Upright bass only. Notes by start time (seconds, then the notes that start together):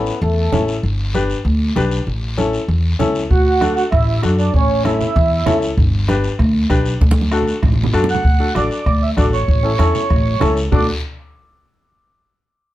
0.22 E2
0.52 A1
0.83 G1
1.45 D2
1.76 B1
2.07 A1
2.68 E2
2.99 C#2
3.30 D2
3.92 A1
4.23 F#2
4.54 A1
5.16 E2
5.46 C#2
5.77 G1
6.39 D2
6.70 B1
7.01 D2
7.63 A1
7.94 F#2
8.24 D2
8.55 A1
8.86 D2
9.17 A1
9.48 A1
9.79 E2
10.10 A1
10.41 C#2
10.72 D2